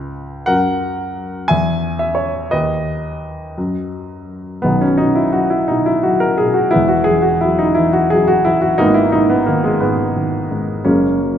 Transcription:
0.00 0.45 C#2 medium
0.00 0.10 B4 medium
0.00 0.11 G#5 medium
0.46 1.46 F#2 medium
0.46 1.45 A#4 medium
0.46 1.44 F#5 loud
1.48 2.50 E2 medium
1.48 1.98 E5 medium
1.48 1.96 G#5 loud
1.99 2.18 E5 medium
2.15 2.48 C#5 medium
2.51 3.54 D#2 medium
2.51 3.87 B4 medium
2.51 3.87 D#5 medium
3.58 4.61 F#2 medium
4.62 6.71 B1 medium
4.62 4.99 B2 medium
4.62 5.66 D#3 medium
4.62 5.33 F#3 medium
4.62 4.81 B3 medium
4.81 4.98 C#4 medium
4.97 5.69 B2 soft
4.97 5.17 D#4 medium
5.15 5.35 E4 medium
5.32 6.04 F#3 soft
5.32 5.52 F#4 medium
5.50 5.67 E4 medium
5.68 6.39 B2 soft
5.68 5.87 D#4 medium
5.86 6.05 E4 medium
6.03 6.73 F#3 soft
6.03 6.22 F#4 medium
6.20 6.39 A#4 medium
6.38 6.74 B2 soft
6.38 6.57 G#4 medium
6.54 6.72 F#4 medium
6.71 7.73 B3 medium
6.71 6.91 E4 medium
6.76 8.76 E1 medium
6.76 8.76 E2 medium
6.88 7.06 F#4 medium
7.04 7.25 G#4 medium
7.11 7.78 E3 soft
7.22 7.42 F#4 medium
7.41 7.58 E4 medium
7.45 8.11 F#3 soft
7.59 7.77 D#4 medium
7.75 7.94 E4 medium
7.79 8.45 E3 medium
7.93 8.11 F#4 medium
8.10 8.78 F#3 medium
8.10 8.28 G#4 medium
8.28 8.44 F#4 medium
8.45 8.79 E3 medium
8.45 8.63 E4 medium
8.61 8.79 F#4 medium
8.78 10.81 G#1 medium
8.78 9.13 G#2 medium
8.78 9.45 A#3 medium
8.78 9.28 B3 medium
8.78 8.96 D#4 loud
8.94 9.11 E4 medium
9.12 9.80 G#2 medium
9.12 9.30 D#4 medium
9.30 9.48 B3 medium
9.46 9.79 D#3 soft
9.46 9.64 A#3 medium
9.64 9.82 G#3 medium
9.80 10.49 G#2 medium
9.80 10.15 D#3 medium
9.80 10.87 B3 medium
10.17 10.83 D#3 medium
10.51 10.84 G#2 medium
10.84 11.38 F#1 medium
10.84 11.19 F#2 medium
10.84 11.38 G#3 medium
10.84 11.38 A#3 medium
10.84 11.38 C#4 medium
11.20 11.38 F#2 soft

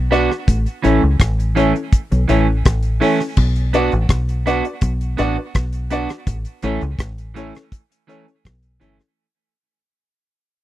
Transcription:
0.00 0.28 B1 medium
0.11 0.29 B3 medium
0.11 0.27 D4 medium
0.11 0.30 D4 medium
0.11 0.27 F#4 medium
0.11 0.30 F#4 loud
0.11 0.27 B4 medium
0.11 0.27 D5 loud
0.11 closed hi-hat medium
0.31 cross-stick medium
0.48 0.66 A1 medium
0.48 kick loud
0.48 closed hi-hat medium
0.66 closed hi-hat soft
0.82 1.02 A1 medium
0.82 1.01 E3 medium
0.82 1.02 A3 loud
0.82 1.02 C#4 medium
0.82 0.99 C#4 medium
0.82 0.99 E4 medium
0.82 1.00 A4 medium
0.82 1.00 C#5 loud
0.82 closed hi-hat medium
1.03 1.19 C#2 medium
1.20 1.72 A1 loud
1.20 kick loud
1.20 cross-stick loud
1.20 closed hi-hat loud
1.40 closed hi-hat medium
1.55 1.74 E3 medium
1.55 1.74 A3 medium
1.55 1.71 C#4 medium
1.55 1.73 C#4 medium
1.55 1.72 E4 medium
1.55 1.72 A4 medium
1.55 1.72 C#5 loud
1.55 closed hi-hat medium
1.74 muted clean electric guitar stroke soft
1.74 closed hi-hat soft
1.93 kick loud
1.93 closed hi-hat medium
2.11 2.28 B1 loud
2.11 2.18 A4 soft
2.11 2.18 C#5 soft
2.11 closed hi-hat medium
2.28 2.63 A1 medium
2.28 2.46 E3 medium
2.28 2.47 A3 medium
2.28 2.44 C#4 medium
2.28 2.47 C#4 medium
2.28 2.44 E4 medium
2.28 2.44 A4 medium
2.28 2.44 C#5 medium
2.28 closed hi-hat medium
2.65 3.00 A1 medium
2.65 kick loud
2.65 cross-stick loud
2.65 closed hi-hat medium
2.83 closed hi-hat medium
3.00 3.19 E3 medium
3.00 3.19 A3 medium
3.00 3.16 C#4 medium
3.00 3.19 C#4 medium
3.00 3.16 E4 medium
3.00 3.16 A4 medium
3.00 3.17 C#5 medium
3.00 open hi-hat medium
3.20 cross-stick medium
3.37 3.89 B1 loud
3.37 kick loud
3.37 crash loud
3.56 closed hi-hat soft
3.73 3.91 B3 medium
3.73 3.89 D4 medium
3.73 3.92 D4 medium
3.73 3.89 F#4 medium
3.73 3.92 F#4 medium
3.73 3.89 B4 medium
3.73 3.89 D5 loud
3.73 closed hi-hat medium
3.92 4.09 A1 medium
3.92 closed hi-hat soft
4.09 4.61 B1 medium
4.09 kick loud
4.09 cross-stick loud
4.09 closed hi-hat loud
4.29 closed hi-hat medium
4.46 4.64 B3 medium
4.46 4.61 D4 medium
4.46 4.64 D4 medium
4.46 4.61 F#4 medium
4.46 4.64 F#4 medium
4.46 4.61 B4 medium
4.46 4.62 D5 loud
4.46 closed hi-hat medium
4.64 4.72 B4 soft
4.64 4.71 D5 soft
4.64 closed hi-hat soft
4.81 5.16 B1 loud
4.81 kick loud
4.81 closed hi-hat medium
5.01 closed hi-hat medium
5.17 5.36 A1 medium
5.17 5.35 B3 medium
5.17 5.33 D4 loud
5.17 5.36 D4 medium
5.17 5.33 F#4 medium
5.17 5.36 F#4 loud
5.17 5.34 B4 medium
5.17 5.34 D5 loud
5.17 closed hi-hat medium
5.38 5.44 B4 soft
5.38 5.44 D5 soft
5.55 6.06 B1 loud
5.55 kick loud
5.55 cross-stick loud
5.55 closed hi-hat medium
5.73 closed hi-hat medium
5.90 6.08 B3 medium
5.90 6.06 D4 medium
5.90 6.09 D4 medium
5.90 6.06 F#4 medium
5.90 6.09 F#4 medium
5.90 6.06 B4 medium
5.90 6.06 D5 loud
5.90 closed hi-hat medium
6.09 cross-stick medium
6.09 closed hi-hat soft
6.27 6.44 A1 medium
6.27 kick loud
6.27 closed hi-hat medium
6.45 closed hi-hat soft
6.62 6.81 A1 medium
6.62 6.81 E3 medium
6.62 6.81 A3 medium
6.62 6.78 C#4 medium
6.62 6.81 C#4 medium
6.62 6.78 E4 medium
6.62 6.79 A4 medium
6.62 6.79 C#5 loud
6.62 closed hi-hat medium
6.81 6.99 C#2 medium
6.81 closed hi-hat soft
6.99 7.51 A1 medium
6.99 kick loud
6.99 cross-stick loud
6.99 closed hi-hat loud
7.18 closed hi-hat medium
7.34 7.52 E3 medium
7.34 7.53 A3 loud
7.34 7.53 C#4 loud
7.34 7.51 C#4 medium
7.34 7.51 E4 medium
7.34 7.51 A4 medium
7.34 7.51 C#5 loud
7.34 closed hi-hat medium
7.54 7.61 A4 soft
7.54 7.61 C#5 soft
7.54 cross-stick medium
7.54 closed hi-hat soft
7.72 kick loud
7.72 closed hi-hat medium
7.92 closed hi-hat medium
8.07 8.25 E3 medium
8.07 8.25 A3 medium
8.07 8.23 C#4 medium
8.07 8.26 C#4 medium
8.07 8.23 E4 medium
8.07 8.23 A4 medium
8.07 8.23 C#5 loud
8.07 closed hi-hat medium
8.27 8.33 A4 soft
8.27 8.33 C#5 soft
8.27 closed hi-hat soft
8.45 8.79 B1 medium
8.45 kick loud
8.45 cross-stick loud
8.45 closed hi-hat medium
8.63 closed hi-hat medium
8.80 8.98 G1 medium
8.80 8.97 E3 medium
8.80 8.98 A3 medium
8.80 8.95 C#4 medium
8.80 8.98 C#4 medium
8.80 8.95 E4 medium
8.80 8.95 A4 medium
8.80 8.95 C#5 medium
8.80 closed hi-hat medium
8.99 cross-stick medium
8.99 closed hi-hat soft

